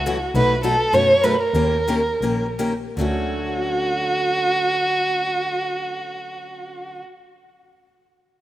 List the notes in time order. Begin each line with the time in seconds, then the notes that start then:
Already playing: C#2 F#4
0.06 C#3 E3 F#3 A3 C#4 E4 F#4 A4
0.35 B1 B2 F#3 A3 D#4 F#4 B4
0.64 B2 F#3 A3 D#4 F#4 A4 B4
0.93 F#2 B2 F#3 A3 D#4 F#4 B4 C#5
1.21 B2 F#3 A3 D#4 F#4 A#4 B4
1.42 A#4
1.54 D#2 D#3 A#3 C#4 G4 A#4
1.88 D#3 A#3 C#4 G4 A#4
2.21 A#1 D#3 A#3 C#4 G4 A#4
2.58 D#3 A#3 C#4 G4 A#4
2.97 D2 D3 F#3 A3 C#4 F#4 A4